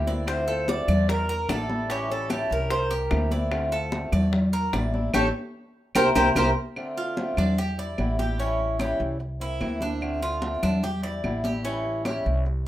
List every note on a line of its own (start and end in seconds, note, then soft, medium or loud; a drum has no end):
0.00 0.82 D2 medium
0.06 0.26 E3 medium
0.06 0.26 A#3 medium
0.06 0.26 C4 medium
0.06 0.26 E4 medium
0.06 0.46 D5 medium
0.06 high conga medium
0.27 0.46 D3 medium
0.27 0.46 A3 medium
0.27 0.47 C4 medium
0.27 0.46 F4 medium
0.27 0.65 C5 medium
0.27 high bongo medium
0.27 high conga soft
0.27 claves medium
0.47 0.67 A3 medium
0.47 0.67 C4 medium
0.47 0.67 F4 medium
0.47 0.87 A4 medium
0.47 high conga soft
0.67 1.07 D3 soft
0.67 1.07 A3 medium
0.67 1.08 C4 medium
0.67 1.08 F4 medium
0.67 1.09 D5 loud
0.67 high bongo medium
0.67 high conga medium
0.88 1.45 E2 loud
0.88 1.27 D5 medium
0.88 low conga medium
0.88 claves medium
1.08 1.47 A#4 medium
1.08 muted steel-string acoustic guitar stroke medium
1.08 high bongo medium
1.29 1.48 A#4 medium
1.29 high conga soft
1.49 2.44 A1 medium
1.49 1.68 D3 soft
1.49 1.68 G3 soft
1.49 1.69 D4 soft
1.49 1.68 E4 medium
1.49 1.91 A4 medium
1.49 1.88 D5 medium
1.49 high bongo medium
1.49 low bongo medium
1.49 high conga medium
1.49 claves medium
1.69 1.89 G3 soft
1.69 1.89 D4 medium
1.69 1.88 E4 medium
1.69 high conga medium
1.90 2.09 E3 medium
1.90 2.09 G3 medium
1.90 2.29 C#4 medium
1.90 2.09 C#4 medium
1.90 2.09 E4 medium
1.90 2.09 G4 medium
1.90 high bongo medium
1.90 high conga soft
2.10 2.29 G3 medium
2.10 2.30 C#4 medium
2.10 2.29 E4 medium
2.10 2.52 A4 medium
2.10 high bongo soft
2.10 high conga soft
2.30 2.69 E3 medium
2.30 2.70 G3 medium
2.30 2.70 C#4 medium
2.30 2.70 E4 medium
2.30 2.69 G4 medium
2.30 high bongo medium
2.30 high conga medium
2.30 claves medium
2.50 3.07 C2 loud
2.50 3.28 A#4 medium
2.50 high bongo soft
2.50 high conga soft
2.70 2.90 C5 medium
2.70 high bongo medium
2.70 high conga soft
2.91 3.30 G4 medium
2.91 high bongo soft
2.91 high conga soft
3.11 4.07 D2 medium
3.11 3.30 E3 soft
3.11 3.31 A#3 soft
3.11 3.30 C4 medium
3.11 3.30 E4 medium
3.11 high bongo medium
3.11 low bongo medium
3.11 high conga medium
3.11 claves medium
3.31 3.51 E3 medium
3.31 3.51 A#3 medium
3.31 3.51 C4 medium
3.31 3.51 E4 medium
3.31 3.71 D5 medium
3.31 high conga medium
3.51 3.71 D3 medium
3.51 3.71 A3 medium
3.51 3.71 C4 medium
3.51 3.70 F4 medium
3.51 high bongo medium
3.51 high conga soft
3.51 claves medium
3.72 3.91 A3 medium
3.72 3.92 C4 medium
3.72 3.91 F4 medium
3.72 4.11 A4 medium
3.72 high conga soft
3.92 4.32 D3 soft
3.92 4.32 A3 medium
3.92 4.32 C4 medium
3.92 4.33 F4 medium
3.92 high bongo medium
3.92 high conga medium
4.12 4.69 E2 medium
4.12 4.52 D5 medium
4.12 low conga medium
4.12 claves medium
4.33 muted steel-string acoustic guitar stroke medium
4.33 high bongo medium
4.33 high conga soft
4.33 low conga medium
4.53 4.73 A#4 medium
4.53 high conga soft
4.73 5.11 A1 medium
4.73 4.93 D3 soft
4.73 4.93 G3 medium
4.73 4.93 D4 soft
4.73 4.92 E4 medium
4.73 5.13 D5 medium
4.73 high bongo medium
4.73 low bongo medium
4.73 high conga medium
4.73 claves medium
4.94 5.14 G3 soft
4.94 5.13 D4 medium
4.94 5.13 E4 medium
4.94 high conga medium
5.14 5.29 A1 loud
5.14 5.27 A3 medium
5.14 5.27 C#4 loud
5.14 5.27 E4 loud
5.14 5.27 G4 medium
5.14 5.27 A4 medium
5.14 5.27 C#5 medium
5.14 low bongo medium
5.14 high conga loud
5.14 claves loud
5.95 6.10 C2 medium
5.95 6.08 A#3 medium
5.95 6.08 C4 medium
5.95 6.08 E4 loud
5.95 6.08 G4 medium
5.95 6.09 G4 loud
5.95 6.08 A#4 loud
5.95 6.09 A#4 loud
5.95 6.09 C5 loud
5.95 6.09 C5 medium
5.95 low bongo loud
5.95 high conga loud
5.95 claves loud
6.15 6.31 C2 medium
6.15 6.29 A#3 medium
6.15 6.29 C4 medium
6.15 6.29 E4 medium
6.15 6.29 G4 medium
6.15 6.28 A#4 medium
6.15 6.29 A#4 medium
6.15 6.29 C5 loud
6.15 6.29 C5 medium
6.15 low bongo loud
6.15 high conga loud
6.15 claves medium
6.35 6.51 C2 loud
6.35 6.49 A#3 medium
6.35 6.49 C4 medium
6.35 6.49 E4 medium
6.35 6.49 G4 medium
6.35 6.49 A#4 medium
6.35 6.50 A#4 medium
6.35 6.49 C5 medium
6.35 6.50 C5 medium
6.35 low bongo medium
6.35 high conga loud
6.35 claves medium
6.76 7.16 D3 medium
6.76 7.16 A3 medium
6.76 7.17 C4 medium
6.76 7.17 F4 medium
6.76 high conga soft
6.76 claves medium
6.97 7.37 F4 medium
6.97 high conga soft
7.17 7.57 D3 medium
7.17 7.57 A3 medium
7.17 7.57 C4 medium
7.17 7.58 F4 medium
7.17 high conga medium
7.37 7.94 E2 medium
7.37 7.58 D4 medium
7.37 low conga medium
7.37 claves medium
7.58 7.78 G4 medium
7.58 muted steel-string acoustic guitar stroke medium
7.58 high conga soft
7.78 7.97 G3 soft
7.78 7.98 D4 soft
7.78 7.97 E4 soft
7.78 8.18 D5 medium
7.78 high conga soft
7.98 8.94 A1 medium
7.98 8.18 D3 medium
7.98 8.18 G3 medium
7.98 8.18 D4 medium
7.98 8.17 E4 medium
7.98 high conga medium
7.98 claves medium
8.18 8.38 G3 soft
8.18 8.38 D4 soft
8.18 8.38 E4 soft
8.18 8.39 G4 medium
8.18 high conga medium
8.38 8.78 E3 medium
8.38 8.78 G3 medium
8.38 8.79 C#4 medium
8.38 8.79 E4 medium
8.38 high conga soft
8.60 high conga soft
8.79 9.19 E3 medium
8.79 9.20 G3 medium
8.79 9.20 C#4 medium
8.79 9.19 E4 medium
8.79 9.00 G4 medium
8.79 high conga loud
8.79 claves medium
9.00 9.57 C2 medium
9.00 high conga soft
9.19 muted steel-string acoustic guitar stroke medium
9.19 high conga soft
9.40 9.61 A#3 soft
9.40 9.60 C4 soft
9.40 9.60 E4 soft
9.40 9.80 E4 medium
9.40 high conga soft
9.61 10.57 D2 medium
9.61 9.81 C3 medium
9.61 9.81 E3 medium
9.61 9.81 A#3 medium
9.61 9.80 C4 medium
9.61 9.79 E4 medium
9.61 high conga medium
9.61 claves medium
9.81 10.01 A#3 soft
9.81 10.01 C4 soft
9.81 10.21 D4 medium
9.81 10.01 E4 soft
9.81 high conga medium
10.01 10.41 D3 medium
10.01 10.41 A3 medium
10.01 10.42 C4 medium
10.01 10.42 F4 medium
10.01 high conga soft
10.01 claves medium
10.21 10.62 F4 medium
10.21 high conga soft
10.42 10.82 D3 medium
10.42 10.82 A3 medium
10.42 10.83 C4 medium
10.42 10.83 F4 medium
10.42 high conga medium
10.63 11.20 E2 medium
10.63 10.83 D4 medium
10.63 low conga medium
10.63 claves medium
10.83 11.03 G4 medium
10.83 muted steel-string acoustic guitar stroke medium
10.83 high conga soft
10.83 low conga medium
11.03 11.23 G3 soft
11.03 11.23 D4 soft
11.03 11.23 E4 medium
11.03 11.43 D5 medium
11.03 high conga soft
11.23 12.20 A1 medium
11.23 11.43 D3 medium
11.23 11.43 G3 medium
11.23 11.43 D4 medium
11.23 11.42 E4 medium
11.23 high conga medium
11.23 claves medium
11.43 11.63 G3 soft
11.43 11.64 D4 soft
11.43 11.63 E4 soft
11.43 11.64 G4 medium
11.43 high conga medium
11.64 12.03 E3 medium
11.64 12.04 G3 medium
11.64 12.04 C#4 medium
11.64 12.05 E4 medium
11.64 high conga soft
11.85 high conga soft
12.05 12.45 E3 medium
12.05 12.45 G3 medium
12.05 12.45 C#4 medium
12.05 12.46 E4 medium
12.05 12.25 G4 medium
12.05 high conga loud
12.05 claves medium
12.25 12.68 C2 medium
12.25 high conga soft
12.46 muted steel-string acoustic guitar stroke medium
12.46 high conga soft